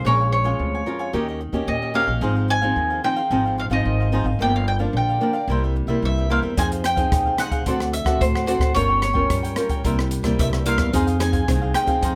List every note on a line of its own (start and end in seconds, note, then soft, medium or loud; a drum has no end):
0.05 0.51 A#1 medium
0.05 0.57 A#2 medium
0.05 0.42 G#3 medium
0.05 0.42 C#4 soft
0.05 0.42 F4 medium
0.05 0.18 A#4 medium
0.05 0.31 C#5 medium
0.05 0.19 C#5 medium
0.05 0.19 F5 medium
0.05 0.19 G#5 medium
0.20 0.32 C#5 soft
0.20 0.32 F5 soft
0.20 0.32 G#5 soft
0.32 1.37 C#5 medium
0.32 muted cavaquinho stroke soft
0.44 0.81 G#3 medium
0.44 0.82 C#4 medium
0.44 0.82 F4 medium
0.44 0.73 C#5 medium
0.44 0.72 F5 medium
0.44 0.72 G#5 medium
0.59 0.83 D2 medium
0.59 1.11 F2 medium
0.75 0.86 C#5 soft
0.75 0.87 F5 soft
0.75 0.86 G#5 medium
0.86 1.09 G#3 soft
0.86 1.09 C#4 medium
0.86 1.10 F4 medium
0.86 0.99 A#4 soft
0.86 1.00 C#5 soft
0.86 0.99 F5 medium
0.86 0.98 G#5 soft
0.99 1.13 C#5 medium
0.99 1.13 F5 medium
0.99 1.12 G#5 medium
1.13 1.48 D#2 medium
1.13 1.65 D#3 medium
1.13 1.39 A#3 medium
1.13 1.40 C#4 medium
1.13 1.26 D#4 medium
1.13 1.27 G4 medium
1.13 1.40 G4 medium
1.13 1.27 C#5 medium
1.13 1.27 D#5 medium
1.28 1.40 G4 soft
1.28 1.40 C#5 soft
1.28 1.40 D#5 soft
1.41 muted cavaquinho stroke soft
1.52 1.65 D#2 medium
1.52 1.90 A#3 medium
1.52 1.90 C#4 medium
1.52 1.91 G4 medium
1.52 1.81 G4 medium
1.52 1.81 C#5 medium
1.52 1.80 D#5 medium
1.67 2.02 D#2 medium
1.67 2.20 A#2 medium
1.67 1.96 D#5 medium
1.82 1.93 G4 soft
1.82 1.94 C#5 soft
1.82 1.94 D#5 soft
1.94 2.11 A#3 medium
1.94 2.11 C#4 medium
1.94 2.07 D#4 medium
1.94 2.07 G4 medium
1.94 2.11 G4 medium
1.94 2.07 C#5 medium
1.94 2.06 D#5 medium
1.94 2.46 F5 medium
2.07 2.19 A#1 medium
2.07 2.21 G4 soft
2.07 2.21 C#5 soft
2.07 2.20 D#5 soft
2.21 2.68 G#1 medium
2.21 2.75 G#2 medium
2.21 2.59 F3 medium
2.21 2.60 C4 medium
2.21 2.34 D#4 medium
2.21 2.60 D#4 medium
2.21 2.35 G#4 medium
2.21 2.35 C5 medium
2.21 2.34 F5 medium
2.35 2.47 G#4 soft
2.35 2.47 C5 soft
2.35 2.48 F5 soft
2.48 3.01 G#5 loud
2.48 muted cavaquinho stroke soft
2.61 2.99 F3 medium
2.61 3.00 C4 medium
2.61 3.00 D#4 medium
2.61 2.90 G#4 medium
2.61 2.89 C5 medium
2.61 2.88 F5 medium
2.76 2.99 D#2 medium
2.76 3.29 D#3 medium
2.90 3.03 G#4 soft
2.90 3.04 C5 soft
2.90 3.03 F5 soft
3.04 3.20 F3 medium
3.04 3.20 C4 medium
3.04 3.16 D#4 soft
3.04 3.20 D#4 medium
3.04 3.17 G#4 soft
3.04 3.16 C5 medium
3.04 3.15 F5 medium
3.04 3.55 G5 loud
3.16 3.30 G#4 medium
3.16 3.30 C5 medium
3.16 3.30 F5 medium
3.30 3.65 G#1 medium
3.30 3.83 G#2 medium
3.30 3.68 F3 medium
3.30 3.68 C4 medium
3.30 3.44 D#4 medium
3.30 3.68 D#4 medium
3.30 3.44 G#4 medium
3.30 3.44 C5 medium
3.30 3.44 F5 medium
3.45 3.57 G#4 soft
3.45 3.57 C5 soft
3.45 3.57 F5 soft
3.58 3.65 F5 medium
3.58 muted cavaquinho stroke soft
3.70 3.82 G#1 medium
3.70 4.08 F3 medium
3.70 4.08 C4 medium
3.70 4.08 D#4 medium
3.70 3.98 G#4 medium
3.70 3.98 C5 medium
3.70 4.42 D#5 medium
3.70 3.98 F5 medium
3.85 4.20 G#1 medium
3.85 4.37 D#3 medium
4.00 4.12 G#4 soft
4.00 4.13 C5 soft
4.00 4.12 F5 soft
4.12 4.29 F3 medium
4.12 4.29 C4 medium
4.12 4.25 D#4 medium
4.12 4.29 D#4 medium
4.12 4.26 G#4 medium
4.12 4.26 C5 medium
4.12 4.24 F5 medium
4.24 4.37 G#1 medium
4.24 4.39 G#4 soft
4.24 4.39 C5 soft
4.24 4.39 F5 soft
4.39 4.86 G1 medium
4.39 4.92 G2 soft
4.39 4.66 F3 medium
4.39 4.66 A#3 medium
4.39 4.66 D4 medium
4.39 4.53 G4 medium
4.39 4.53 A#4 medium
4.39 4.54 D5 medium
4.39 4.53 F5 medium
4.39 4.54 G5 loud
4.54 4.67 A#4 soft
4.54 4.67 D5 soft
4.54 4.67 F5 soft
4.54 4.67 F5 medium
4.67 4.75 G5 medium
4.67 muted cavaquinho stroke soft
4.79 5.16 F3 medium
4.79 5.17 A#3 medium
4.79 5.17 D4 medium
4.79 5.07 A#4 medium
4.79 5.07 D5 medium
4.79 5.06 F5 medium
4.93 5.17 A#1 medium
4.93 5.46 D3 medium
4.93 5.46 G5 medium
5.09 5.21 A#4 soft
5.09 5.22 D5 soft
5.09 5.21 F5 soft
5.20 5.37 F3 soft
5.20 5.37 A#3 medium
5.20 5.38 D4 medium
5.20 5.34 G4 soft
5.20 5.34 A#4 soft
5.20 5.33 D5 soft
5.20 5.32 F5 medium
5.33 5.48 A#4 medium
5.33 5.47 D5 medium
5.33 5.47 F5 medium
5.48 5.83 C2 medium
5.48 6.00 C3 medium
5.48 5.85 G3 medium
5.48 5.85 A#3 soft
5.48 5.86 E4 medium
5.48 5.62 E4 medium
5.48 5.62 A#4 medium
5.48 5.63 C5 medium
5.48 5.63 E5 medium
5.64 5.75 A#4 soft
5.64 5.75 C5 soft
5.64 5.76 E5 soft
5.76 muted cavaquinho stroke soft
5.87 6.00 C2 medium
5.87 6.26 G3 medium
5.87 6.26 A#3 medium
5.87 6.26 E4 medium
5.87 6.16 A#4 medium
5.87 6.16 C5 medium
5.87 6.15 E5 medium
6.02 6.38 C2 medium
6.02 6.55 G2 medium
6.02 6.30 E5 medium
6.18 6.29 A#4 soft
6.18 6.30 C5 soft
6.18 6.30 E5 soft
6.30 6.53 G3 medium
6.30 6.53 A#3 medium
6.30 6.43 E4 medium
6.30 6.53 E4 medium
6.30 6.43 A#4 medium
6.30 6.42 C5 medium
6.30 6.41 E5 medium
6.30 6.39 F5 medium
6.42 6.55 E2 medium
6.42 6.57 A#4 soft
6.42 6.56 C5 soft
6.42 6.56 E5 soft
6.57 7.04 F2 medium
6.57 7.09 F3 medium
6.57 6.83 C4 medium
6.57 6.70 D#4 medium
6.57 6.83 D#4 medium
6.57 6.70 G#4 medium
6.57 6.84 G#4 medium
6.57 6.71 C5 medium
6.57 6.71 F5 medium
6.57 6.66 G#5 loud
6.57 kick medium
6.57 closed hi-hat medium
6.72 6.83 G#4 soft
6.72 6.83 C5 soft
6.72 6.84 F5 soft
6.72 closed hi-hat soft
6.84 7.39 G5 loud
6.84 muted cavaquinho stroke soft
6.84 cross-stick medium
6.84 closed hi-hat soft
6.96 7.35 C4 medium
6.96 7.35 D#4 medium
6.96 7.24 G#4 medium
6.96 7.35 G#4 medium
6.96 7.24 C5 medium
6.96 7.23 F5 medium
6.96 kick medium
6.96 closed hi-hat soft
7.12 7.35 D#2 medium
7.12 7.64 C3 medium
7.12 kick medium
7.12 cross-stick medium
7.12 closed hi-hat medium
7.26 7.37 G#4 soft
7.26 7.38 C5 soft
7.26 7.38 F5 soft
7.37 7.62 C4 medium
7.37 7.51 D#4 soft
7.37 7.62 D#4 medium
7.37 7.51 G#4 soft
7.37 7.62 G#4 medium
7.37 7.51 C5 soft
7.37 7.50 F5 medium
7.37 7.90 F#5 medium
7.37 cross-stick medium
7.37 closed hi-hat soft
7.51 7.66 G#4 medium
7.51 7.65 C5 medium
7.51 7.65 F5 medium
7.51 kick medium
7.51 closed hi-hat soft
7.66 8.01 D2 loud
7.66 8.19 D3 medium
7.66 7.93 C4 medium
7.66 7.79 D4 medium
7.66 7.93 F#4 soft
7.66 7.93 A4 medium
7.66 7.79 C5 medium
7.66 7.80 D5 medium
7.66 7.79 F#5 medium
7.66 kick medium
7.66 closed hi-hat medium
7.80 7.93 C5 soft
7.80 7.93 D5 soft
7.80 7.93 F#5 soft
7.80 cross-stick medium
7.93 8.22 E5 medium
7.93 muted cavaquinho stroke soft
7.93 closed hi-hat soft
8.04 8.17 D2 medium
8.04 8.44 C4 medium
8.04 8.44 F#4 medium
8.04 8.44 A4 medium
8.04 8.34 C5 medium
8.04 8.33 D5 medium
8.04 8.33 F#5 medium
8.04 kick medium
8.04 cross-stick medium
8.04 closed hi-hat soft
8.21 8.56 D2 medium
8.21 8.73 A2 medium
8.21 8.46 C5 medium
8.21 kick medium
8.21 closed hi-hat medium
8.35 8.46 C5 soft
8.35 8.47 D5 soft
8.35 8.47 F#5 soft
8.35 cross-stick medium
8.46 8.71 C4 medium
8.46 8.60 D4 medium
8.46 8.71 F#4 medium
8.46 8.71 A4 medium
8.46 8.60 C5 medium
8.46 8.74 C5 medium
8.46 8.60 D5 medium
8.46 8.59 F#5 medium
8.46 closed hi-hat soft
8.59 8.72 D2 medium
8.59 8.75 C5 soft
8.59 8.74 D5 soft
8.59 8.74 F#5 medium
8.59 kick medium
8.59 cross-stick medium
8.59 closed hi-hat soft
8.75 9.22 G1 loud
8.75 9.28 G3 medium
8.75 9.01 C#4 medium
8.75 8.88 F4 medium
8.75 9.01 F4 medium
8.75 8.88 A#4 medium
8.75 9.02 A#4 medium
8.75 9.01 C#5 loud
8.75 8.88 C#5 medium
8.75 8.87 G5 medium
8.75 kick medium
8.75 closed hi-hat medium
8.89 9.01 A#4 soft
8.89 9.01 C#5 soft
8.89 9.01 G5 soft
9.02 9.80 C#5 medium
9.02 muted cavaquinho stroke soft
9.02 cross-stick medium
9.02 closed hi-hat soft
9.14 9.52 C#4 medium
9.14 9.52 F4 medium
9.14 9.42 A#4 medium
9.14 9.53 A#4 medium
9.14 9.42 C#5 medium
9.14 9.41 G5 medium
9.14 kick medium
9.30 9.53 G2 medium
9.30 9.82 G3 medium
9.30 kick medium
9.30 cross-stick medium
9.30 closed hi-hat medium
9.43 9.56 A#4 soft
9.43 9.56 C#5 soft
9.43 9.56 G5 soft
9.43 closed hi-hat soft
9.56 9.80 C#4 medium
9.56 9.69 F4 soft
9.56 9.80 F4 medium
9.56 9.80 A#4 medium
9.56 9.70 A#4 soft
9.56 9.70 C#5 soft
9.56 9.69 G5 medium
9.56 cross-stick medium
9.56 closed hi-hat soft
9.69 9.84 A#4 medium
9.69 9.84 C#5 medium
9.69 9.83 G5 medium
9.69 kick medium
9.69 closed hi-hat soft
9.84 10.19 C2 medium
9.84 10.36 C3 soft
9.84 10.21 G3 medium
9.84 10.22 A#3 medium
9.84 9.97 E4 medium
9.84 10.22 E4 medium
9.84 9.97 A#4 medium
9.84 9.98 C5 medium
9.84 9.98 E5 medium
9.84 kick medium
9.84 closed hi-hat medium
9.99 10.10 A#4 soft
9.99 10.11 C5 soft
9.99 10.11 E5 soft
9.99 cross-stick medium
10.11 muted cavaquinho stroke soft
10.11 closed hi-hat soft
10.23 10.36 C2 medium
10.23 10.61 G3 medium
10.23 10.62 A#3 medium
10.23 10.62 E4 medium
10.23 10.52 A#4 medium
10.23 10.51 C5 medium
10.23 10.51 E5 medium
10.23 kick medium
10.23 cross-stick medium
10.23 closed hi-hat soft
10.38 10.74 C2 medium
10.38 10.91 G2 medium
10.38 10.47 E5 medium
10.38 kick medium
10.38 closed hi-hat medium
10.53 10.66 A#4 soft
10.53 10.66 C5 soft
10.53 10.66 E5 soft
10.53 cross-stick medium
10.66 10.89 G3 medium
10.66 10.89 A#3 medium
10.66 10.79 E4 medium
10.66 10.89 E4 medium
10.66 10.79 A#4 medium
10.66 10.79 C5 medium
10.66 10.78 E5 medium
10.66 11.17 F5 loud
10.66 closed hi-hat soft
10.77 10.90 E2 medium
10.77 10.93 C5 soft
10.77 10.92 E5 soft
10.77 kick medium
10.77 cross-stick medium
10.77 closed hi-hat soft
10.81 10.93 A#4 soft
10.93 11.40 F2 loud
10.93 11.45 F3 medium
10.93 11.16 C4 soft
10.93 11.16 D#4 medium
10.93 11.06 D#4 medium
10.93 11.17 G#4 medium
10.93 11.07 G#4 medium
10.93 11.07 C5 medium
10.93 11.05 F5 medium
10.93 kick medium
10.93 closed hi-hat medium
11.07 11.19 G#4 soft
11.07 11.20 C5 soft
11.07 11.20 F5 medium
11.07 closed hi-hat soft
11.19 11.43 C4 medium
11.19 11.43 D#4 medium
11.19 11.43 G#4 medium
11.19 11.71 G#5 loud
11.19 muted cavaquinho stroke soft
11.19 cross-stick medium
11.19 closed hi-hat soft
11.32 11.61 G#4 medium
11.32 11.60 C5 medium
11.32 11.60 F5 medium
11.32 kick medium
11.32 closed hi-hat soft
11.48 11.71 C2 medium
11.48 12.00 C3 medium
11.48 11.84 C4 medium
11.48 11.85 D#4 medium
11.48 11.85 G#4 medium
11.48 kick medium
11.48 cross-stick medium
11.48 closed hi-hat medium
11.62 11.74 G#4 soft
11.62 11.74 C5 soft
11.62 11.74 F5 medium
11.74 11.87 D#4 soft
11.74 11.88 G#4 soft
11.74 11.88 C5 soft
11.74 11.87 F5 medium
11.74 12.15 G5 medium
11.74 cross-stick medium
11.74 closed hi-hat medium
11.87 12.15 C4 medium
11.87 12.15 D#4 medium
11.87 12.15 G#4 medium
11.87 12.02 G#4 medium
11.87 12.02 C5 medium
11.87 12.01 F5 medium
11.87 kick medium
11.87 closed hi-hat soft
12.01 12.15 F2 medium
12.01 12.15 F3 medium
12.01 12.15 D#4 medium
12.01 12.15 G#4 medium
12.01 12.15 C5 medium
12.01 12.15 F5 medium
12.01 kick medium
12.01 closed hi-hat medium